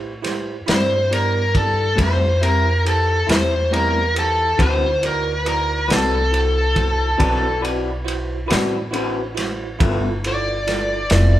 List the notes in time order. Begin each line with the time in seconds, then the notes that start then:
Already playing: A2 E4 G4 B4 C5
0.22 E4 G4 B4 C5, snare, ride
0.66 G2 C4 E4 G4 C5 D5 B5, snare, ride
0.70 G3
1.10 B3 E4 G4 A#4 D5, ride
1.55 E4 G4 A4 B4 D5, kick, ride
1.95 F2 A2 G3 C4 E4 G4 B5, kick, ride
1.99 C5
2.41 G3 C4 E4 G4 A#4 C5, ride
2.85 E4 G4 A4 B4 C5, ride
3.27 E2 G3 C4 E4 G4 C5 B5, snare, ride
3.70 A2 G3 B3 C4 E4 G4 A#4 D5, ride
4.14 E4 G4 B4 C5, ride
4.19 A4
4.58 D2 D3 C4 E4 F#4 B4 C5 B5, kick, ride
4.62 C5
5.02 E4 F#4 A#4 C5 D5, ride
5.45 E4 F#4 A#4 C5 D5, ride
5.88 C2 C4 E4 F#4 B4 D5, snare, ride
5.93 A4
6.32 E4 F#4 B4 C5, ride
6.75 E4 F#4 B4 C5, kick, ride
7.17 B1 D3 C4 E4 F#4 B4 D5, kick, ride
7.61 E4 F#4 B4 D5, ride
7.65 C4
8.04 E4 F#4 B4 C5, ride
8.47 E4 F#4 B4 D5, ride
8.51 A1 C4, snare
8.91 D3 C4 E4 F#4 B4 C5, ride
8.95 B4
9.35 E4 F#4 B4 C5, snare, ride
9.79 G1 G2 F3 B3 E4 F4 A4 B4, kick, ride
10.24 E4 F4 A4 B4 D5, ride
10.67 E4 F4 A4 B4, snare, ride
11.10 F1 F3 B3 E4 F4 A4 D5, snare, ride